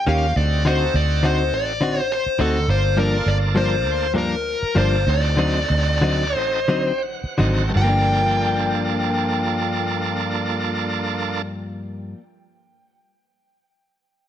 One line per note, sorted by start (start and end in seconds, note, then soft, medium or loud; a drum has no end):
0.07 0.33 D#2 medium
0.07 0.25 D#3 medium
0.07 0.34 A#3 medium
0.07 0.26 A#3 medium
0.07 0.34 C#4 medium
0.07 0.26 C#4 medium
0.07 0.34 F4 medium
0.07 0.35 G4 medium
0.07 0.26 G4 medium
0.07 0.37 F5 medium
0.36 0.88 D2 medium
0.36 0.63 C4 medium
0.36 0.63 D#4 medium
0.36 0.64 F#4 medium
0.36 0.64 A4 medium
0.36 0.66 D5 medium
0.65 0.84 D3 medium
0.65 1.73 C4 medium
0.65 0.84 C4 medium
0.65 1.73 D#4 medium
0.65 0.84 D#4 medium
0.65 1.74 F#4 medium
0.65 0.85 F#4 medium
0.65 1.74 A4 medium
0.65 0.96 C5 medium
0.94 1.52 D2 medium
0.94 1.25 D5 medium
1.23 1.41 D3 medium
1.23 1.42 C4 medium
1.23 1.42 D#4 medium
1.23 1.43 F#4 medium
1.23 1.54 C5 medium
1.52 2.18 A1 medium
1.52 2.00 D5 medium
1.81 1.99 D3 medium
1.81 2.00 C4 medium
1.81 2.00 D#4 medium
1.81 2.01 F#4 medium
2.00 2.12 C5 medium
2.12 2.38 C5 medium
2.26 muted fingered electric bass stroke soft
2.39 2.65 D2 medium
2.39 2.58 D3 medium
2.39 2.67 C4 medium
2.39 2.58 C4 medium
2.39 2.67 D#4 medium
2.39 2.58 D#4 medium
2.39 2.67 F#4 medium
2.39 2.59 F#4 medium
2.39 2.67 A4 medium
2.39 2.70 A4 medium
2.68 3.20 G1 loud
2.68 2.95 A#3 medium
2.68 2.96 D4 medium
2.68 2.96 F4 medium
2.68 2.96 A4 medium
2.68 2.99 C5 medium
2.97 3.16 G2 medium
2.97 3.16 F3 medium
2.97 4.07 A#3 medium
2.97 3.16 A#3 medium
2.97 4.07 D4 medium
2.97 3.17 D4 medium
2.97 4.07 F4 medium
2.97 4.08 A4 medium
2.97 3.29 A#4 medium
3.26 3.86 G1 medium
3.26 3.36 D5 medium
3.55 3.74 G2 medium
3.55 3.75 F3 medium
3.55 3.75 A#3 medium
3.55 3.76 D4 medium
3.55 4.12 C5 medium
3.86 4.54 D2 medium
4.14 4.34 G2 medium
4.14 4.34 F3 medium
4.14 4.35 A#3 medium
4.14 4.35 D4 medium
4.18 4.78 A#4 medium
4.63 muted fingered electric bass stroke soft
4.75 5.04 G1 medium
4.75 4.95 G2 medium
4.75 4.96 F3 medium
4.75 5.05 A#3 medium
4.75 4.96 A#3 medium
4.75 5.05 D4 medium
4.75 4.96 D4 medium
4.75 5.05 F4 medium
4.75 5.06 A4 medium
4.75 5.09 C5 medium
5.06 5.63 D2 loud
5.06 5.36 C4 medium
5.06 5.36 D#4 medium
5.06 5.36 F#4 medium
5.06 5.37 A4 medium
5.06 6.36 D5 medium
5.37 5.58 D3 medium
5.37 5.59 F#3 medium
5.37 6.60 C4 medium
5.37 5.59 C4 medium
5.37 6.60 D#4 medium
5.37 5.59 D#4 medium
5.37 6.60 F#4 medium
5.37 6.60 A4 medium
5.70 6.36 D2 medium
6.01 6.23 D3 medium
6.01 6.24 F#3 medium
6.01 6.24 C4 medium
6.01 6.24 D#4 medium
6.01 6.33 D5 medium
6.35 7.13 A1 medium
6.35 7.01 C5 medium
6.35 6.84 D#5 medium
6.68 6.91 D3 medium
6.68 6.91 F#3 medium
6.68 6.91 C4 medium
6.68 6.92 D#4 medium
6.88 7.02 G5 medium
7.03 7.70 F#5 medium
7.24 muted fingered electric bass stroke soft
7.38 7.71 G#1 medium
7.38 7.61 D3 medium
7.38 7.62 F#3 medium
7.38 7.72 C4 medium
7.38 7.62 C4 medium
7.38 7.72 D#4 medium
7.38 7.62 D#4 medium
7.38 7.72 F#4 medium
7.38 7.72 A4 medium
7.69 12.13 G2 medium
7.74 12.13 G1 medium
7.74 12.17 F3 medium
7.74 11.42 A#3 medium
7.74 11.42 D4 medium
7.74 11.42 F4 medium
7.74 11.42 A4 medium
7.74 11.43 G5 medium
7.84 12.21 A#3 medium
7.89 12.23 D4 medium